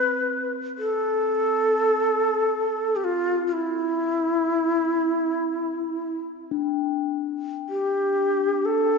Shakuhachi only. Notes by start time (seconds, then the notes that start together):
Already playing: B4
0.78 A4
2.96 G4
3.04 F4
3.47 F4
3.53 E4
7.69 G4
8.65 A4